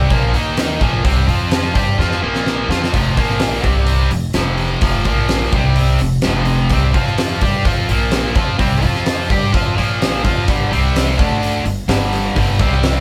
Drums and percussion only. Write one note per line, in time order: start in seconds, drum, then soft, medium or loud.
0.10 kick loud
0.10 open hi-hat medium
0.34 open hi-hat medium
0.57 snare loud
0.57 open hi-hat medium
0.81 kick loud
0.81 open hi-hat medium
1.05 kick loud
1.05 open hi-hat medium
1.29 open hi-hat medium
1.51 snare loud
1.51 open hi-hat medium
1.75 kick medium
1.75 open hi-hat medium
2.00 snare medium
2.11 snare medium
2.35 snare medium
2.46 snare medium
2.71 snare medium
2.84 snare medium
2.94 kick loud
2.94 open hi-hat medium
3.17 kick loud
3.17 open hi-hat medium
3.30 snare soft
3.40 snare loud
3.40 open hi-hat medium
3.64 kick loud
3.64 open hi-hat medium
3.87 open hi-hat medium
4.11 open hi-hat medium
4.34 snare loud
4.34 open hi-hat medium
4.58 open hi-hat soft
4.81 kick loud
4.81 open hi-hat medium
5.05 kick loud
5.05 open hi-hat medium
5.29 snare loud
5.29 open hi-hat medium
5.53 kick loud
5.53 open hi-hat medium
5.76 open hi-hat medium
5.99 open hi-hat medium
6.22 snare loud
6.22 open hi-hat medium
6.45 open hi-hat medium
6.70 kick loud
6.70 open hi-hat medium
6.94 kick loud
6.94 open hi-hat medium
7.07 snare soft
7.18 snare loud
7.18 open hi-hat medium
7.41 kick loud
7.41 open hi-hat medium
7.65 kick loud
7.65 open hi-hat medium
7.89 open hi-hat medium
8.11 snare loud
8.11 open hi-hat medium
8.35 kick loud
8.35 open hi-hat medium
8.59 kick loud
8.59 open hi-hat medium
8.82 open hi-hat soft
8.95 snare soft
9.06 snare loud
9.06 open hi-hat medium
9.30 kick loud
9.30 open hi-hat medium
9.54 kick loud
9.54 open hi-hat medium
9.78 open hi-hat medium
10.02 snare loud
10.02 open hi-hat medium
10.25 kick loud
10.25 open hi-hat medium
10.48 kick loud
10.48 open hi-hat medium
10.73 open hi-hat medium
10.96 snare loud
10.96 open hi-hat medium
11.19 kick loud
11.19 open hi-hat medium
11.43 open hi-hat medium
11.66 open hi-hat medium
11.89 snare loud
11.89 open hi-hat medium
12.13 open hi-hat medium
12.36 kick loud
12.36 open hi-hat medium
12.59 kick loud
12.59 open hi-hat medium
12.72 snare soft
12.83 snare loud
12.83 open hi-hat medium